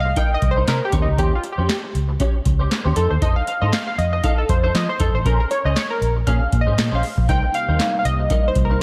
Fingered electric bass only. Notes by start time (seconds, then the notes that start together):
Already playing: C2
0.42 C2
0.68 C3
0.93 D#2
1.08 C#2
1.18 D#2
1.58 F2
1.95 C#2
2.46 C#2
2.86 D#2
2.97 F2
3.11 D#2
3.22 F2
3.62 G#2
3.98 F2
4.49 F2
4.75 F3
5.00 F2
5.14 A1
5.26 A#1
5.65 C#2
6.02 A#1
6.27 A#2
6.53 A#2
6.67 G#2
6.78 A#2
6.92 A#1
7.18 A#1
7.29 C2
7.68 D#2
8.05 C2
8.56 C2